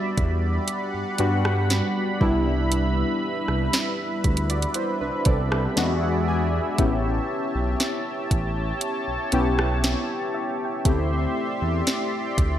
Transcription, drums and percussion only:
0.17 kick, closed hi-hat
0.68 closed hi-hat
1.18 closed hi-hat
1.45 cross-stick
1.70 snare, closed hi-hat
2.21 kick
2.72 closed hi-hat
3.48 cross-stick
3.73 snare, closed hi-hat
4.24 kick, closed hi-hat
4.37 closed hi-hat
4.50 closed hi-hat
4.62 closed hi-hat
4.74 closed hi-hat
5.25 kick, closed hi-hat
5.52 cross-stick
5.77 snare, closed hi-hat
6.78 kick, closed hi-hat
7.80 snare, closed hi-hat
8.31 kick, closed hi-hat
8.81 closed hi-hat
9.32 closed hi-hat
9.59 cross-stick
9.84 snare, closed hi-hat
10.85 kick, closed hi-hat
11.87 snare, closed hi-hat
12.38 kick, closed hi-hat

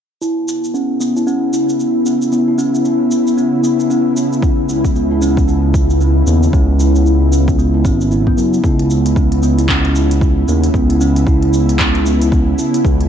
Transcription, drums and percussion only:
0.22 shaker
0.48 shaker
0.64 shaker
0.75 shaker
1.01 shaker
1.17 shaker
1.27 shaker
1.53 shaker
1.69 shaker
1.80 shaker
2.06 shaker
2.22 shaker
2.32 shaker
2.59 shaker
2.75 shaker
2.85 shaker
3.11 shaker
3.27 shaker
3.38 shaker
3.64 shaker
3.80 shaker
3.91 shaker
4.17 shaker
4.33 shaker
4.43 kick, shaker
4.69 shaker
4.85 kick, shaker
4.96 shaker
5.22 shaker
5.37 kick, shaker
5.48 shaker
5.74 kick, shaker
5.90 shaker
6.01 shaker
6.27 shaker
6.43 shaker
6.53 kick, shaker
6.80 shaker
6.96 shaker
7.06 shaker
7.33 shaker
7.48 kick, shaker
7.59 shaker
7.85 kick, shaker
8.01 shaker
8.11 shaker
8.27 kick
8.38 shaker
8.54 shaker
8.64 kick, shaker
8.79 closed hi-hat
8.90 shaker
9.06 closed hi-hat, shaker
9.16 kick, shaker
9.32 closed hi-hat
9.43 shaker
9.59 closed hi-hat, shaker
9.69 kick, clap, shaker
9.85 closed hi-hat
9.95 shaker
10.11 closed hi-hat, shaker
10.21 kick, shaker
10.48 shaker
10.64 closed hi-hat, shaker
10.74 kick, shaker
10.90 closed hi-hat
11.01 shaker
11.16 closed hi-hat, shaker
11.27 kick, shaker
11.42 closed hi-hat
11.53 shaker
11.69 closed hi-hat, shaker
11.79 kick, clap, shaker
11.95 closed hi-hat
12.06 shaker
12.22 closed hi-hat, shaker
12.32 kick, shaker
12.59 shaker
12.74 closed hi-hat, shaker
12.85 kick, shaker
13.01 closed hi-hat

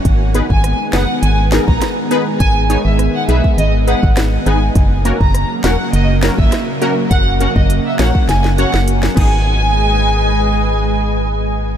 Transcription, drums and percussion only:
0.05 kick, closed hi-hat
0.35 closed hi-hat
0.50 kick
0.64 cross-stick, closed hi-hat
0.93 snare, closed hi-hat
1.23 closed hi-hat
1.52 snare, closed hi-hat
1.68 kick
1.81 cross-stick, snare, closed hi-hat
2.11 closed hi-hat
2.40 kick, closed hi-hat
2.70 closed hi-hat
2.99 cross-stick, closed hi-hat
3.29 closed hi-hat
3.44 kick
3.58 closed hi-hat
3.88 closed hi-hat
4.03 kick
4.17 cross-stick, snare, closed hi-hat
4.46 closed hi-hat
4.75 kick, closed hi-hat
5.05 closed hi-hat
5.21 kick
5.34 cross-stick, closed hi-hat
5.64 snare, closed hi-hat
5.93 closed hi-hat
6.23 snare, closed hi-hat
6.39 kick
6.52 cross-stick, snare, closed hi-hat
6.82 closed hi-hat
7.11 kick, closed hi-hat
7.40 closed hi-hat
7.56 kick
7.70 closed hi-hat
7.99 snare, closed hi-hat
8.15 kick
8.29 snare, closed hi-hat
8.44 snare
8.58 closed hi-hat
8.74 snare
8.88 closed hi-hat
9.03 snare
9.17 kick, crash

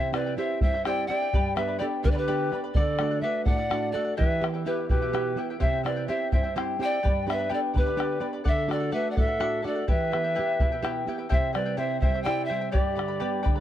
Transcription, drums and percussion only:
0.14 bombo rim
0.61 bombo low
0.74 bombo rim
0.85 bombo rim
1.10 bombo rim
1.34 bombo low
1.57 bombo rim
2.05 bombo low
2.17 bombo rim
2.52 bombo rim
2.75 bombo low
2.99 bombo rim
3.46 bombo low
3.59 bombo rim
3.71 bombo rim
3.95 bombo rim
4.20 bombo low
4.44 bombo rim
4.56 bombo rim
4.79 bombo rim
4.90 bombo low
5.15 bombo rim
5.62 bombo low
5.86 bombo rim
6.32 bombo low
6.45 bombo rim
6.58 bombo rim
6.82 bombo rim
7.05 bombo low
7.30 bombo rim
7.76 bombo low
7.88 bombo rim
8.00 bombo rim
8.24 bombo rim
8.46 bombo low
8.71 bombo rim
9.17 bombo low
9.28 bombo rim
9.41 bombo rim
9.65 bombo rim
9.88 bombo low
10.01 bombo rim
10.13 bombo rim
10.37 bombo rim
10.49 bombo rim
10.60 bombo low
10.85 bombo rim
11.32 bombo low
11.55 bombo rim
12.02 bombo low
12.15 bombo rim
12.26 bombo rim
12.52 bombo rim
12.74 bombo low
12.99 bombo rim
13.46 bombo low

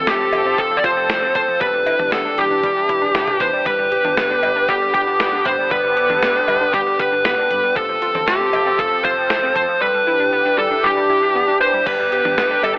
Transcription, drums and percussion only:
0.07 snare, closed hi-hat
0.33 closed hi-hat, cowbell
0.58 kick, closed hi-hat
0.84 kick, closed hi-hat
1.10 snare, closed hi-hat
1.35 kick, closed hi-hat
1.61 kick, closed hi-hat
1.86 closed hi-hat, cowbell
1.99 mid tom
2.12 snare, closed hi-hat
2.38 closed hi-hat
2.63 kick, closed hi-hat
2.89 kick, closed hi-hat
3.15 snare, closed hi-hat, mid tom
3.28 mid tom
3.40 kick, closed hi-hat
3.66 kick, closed hi-hat
3.92 closed hi-hat
4.05 mid tom
4.17 snare, closed hi-hat
4.43 closed hi-hat, cowbell
4.69 kick, closed hi-hat
4.94 kick, closed hi-hat
5.20 snare, closed hi-hat
5.45 kick, closed hi-hat
5.71 kick, closed hi-hat
5.97 closed hi-hat
6.10 mid tom
6.23 snare, closed hi-hat
6.48 closed hi-hat, cowbell
6.74 kick, closed hi-hat
7.00 kick, closed hi-hat
7.25 snare, closed hi-hat
7.51 closed hi-hat
7.76 kick, closed hi-hat
8.02 closed hi-hat
8.15 mid tom
8.28 snare, closed hi-hat
8.53 closed hi-hat, cowbell
8.79 kick, closed hi-hat
9.05 kick, closed hi-hat
9.30 snare, closed hi-hat
9.56 kick, closed hi-hat
11.87 kick, closed hi-hat, crash
12.12 closed hi-hat
12.25 mid tom
12.38 snare, closed hi-hat
12.63 closed hi-hat, cowbell

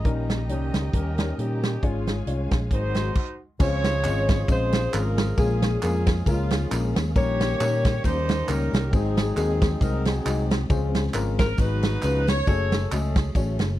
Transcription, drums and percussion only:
0.05 kick, closed hi-hat
0.30 snare, closed hi-hat
0.49 closed hi-hat
0.74 snare, closed hi-hat
0.93 kick, closed hi-hat
1.18 snare, closed hi-hat
1.39 closed hi-hat
1.63 snare, closed hi-hat
1.83 kick, closed hi-hat
2.07 snare, closed hi-hat
2.27 closed hi-hat
2.51 kick, snare, closed hi-hat
2.71 kick, closed hi-hat
2.95 snare, closed hi-hat
3.15 kick, crash
3.60 kick, crash, tambourine
3.84 snare, ride, tambourine
4.04 clap, ride, tambourine
4.29 kick, snare, ride, tambourine
4.48 kick, ride, tambourine
4.72 snare, ride, tambourine
4.94 clap, ride, tambourine
5.18 snare, ride, tambourine
5.37 kick, ride, tambourine
5.62 snare, ride, tambourine
5.82 clap, ride, tambourine
6.07 kick, snare, ride, tambourine
6.26 kick, ride, tambourine
6.51 snare, ride, tambourine
6.72 clap, ride, tambourine
6.96 snare, ride, tambourine
7.16 kick, ride, tambourine
7.41 snare, ride, tambourine
7.60 clap, ride, tambourine
7.85 kick, snare, ride, tambourine
8.04 kick, ride, tambourine
8.29 snare, ride, tambourine
8.49 clap, ride, tambourine
8.74 snare, ride, tambourine
8.93 kick, ride, tambourine
9.17 snare, ride, tambourine
9.37 clap, ride, tambourine
9.62 kick, snare, ride, tambourine
9.81 kick, ride, tambourine
10.05 snare, ride, tambourine
10.26 clap, ride, tambourine
10.51 snare, ride, tambourine
10.70 kick, ride, tambourine
10.95 snare, ride, tambourine
11.14 clap, ride, tambourine
11.39 kick, snare, ride, tambourine
11.58 kick, ride, tambourine
11.83 snare, ride, tambourine
12.02 clap, ride, tambourine
12.27 snare, ride, tambourine
12.47 kick, ride, tambourine
12.72 snare, ride, tambourine
12.92 clap, ride, tambourine
13.16 kick, snare, ride, tambourine
13.35 kick, ride, tambourine
13.59 snare, ride, tambourine

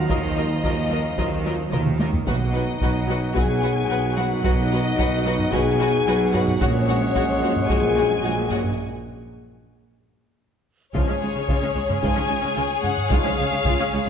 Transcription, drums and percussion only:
0.10 taiko
0.64 taiko
1.18 taiko
1.73 taiko mid
1.86 taiko mid
2.00 taiko high
2.13 taiko low
2.27 taiko
2.81 taiko
3.36 taiko
4.44 taiko
4.99 taiko
5.39 taiko low-mid
5.53 taiko
6.34 taiko low-mid
6.48 taiko low-mid
6.61 taiko
7.16 taiko
7.56 taiko low-mid
7.70 taiko
8.51 taiko low-mid
8.64 taiko low-mid
10.95 taiko
11.49 taiko
11.89 taiko low-mid
12.03 taiko
12.84 taiko low-mid
12.97 taiko low-mid
13.11 taiko
13.65 taiko
14.06 taiko low-mid

